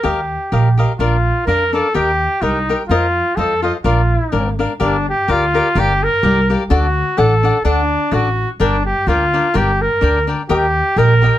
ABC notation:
X:1
M:2/4
L:1/16
Q:"Swing" 1/4=126
K:Bb
V:1 name="Cavaquinho"
[GBef]2 z2 [GBef]2 [GBef]2 | [DBdf]2 z2 [DBdf]2 [DBdf]2 | [GBeg]2 z2 [GBeg]2 [GBeg]2 | [FBce]2 z2 [FAce]2 [FAce]2 |
[DBdf]2 z2 [DBdf]2 [DBdf]2 | [K:Gm] [GBdf]2 z2 [GBdf]2 [GBdf]2 | [GBdf]2 z2 [GBdf]2 [GBdf]2 | [DAd^f]2 z2 [DAdf]2 [DAdf]2 |
[DAd^f]2 z2 [DAdf]2 z2 | [DBdg]2 z2 [DBdg]2 [DBdg]2 | [DBdg]2 z2 [DBdg]2 [DBdg]2 | [GBeg]2 z2 [GBeg]2 [GBeg]2 |]
V:2 name="Trumpet"
G6 z2 | F4 B2 A2 | G4 E3 z | F4 A2 F2 |
F6 z2 | [K:Gm] D2 G2 F4 | G2 B4 z2 | ^F4 A4 |
D4 ^F3 z | D2 G2 F4 | G2 B4 z2 | G4 B4 |]
V:3 name="Upright bass" clef=bass
E,,4 B,,,4 | B,,,4 F,,4 | E,,4 C,,4 | F,,4 F,,4 |
B,,,4 _A,,,4 | [K:Gm] G,,,4 D,,4 | G,,,4 C,,4 | D,,4 A,,,4 |
D,,4 A,,,4 | G,,,4 D,,4 | G,,,4 D,,4 | E,,4 B,,,4 |]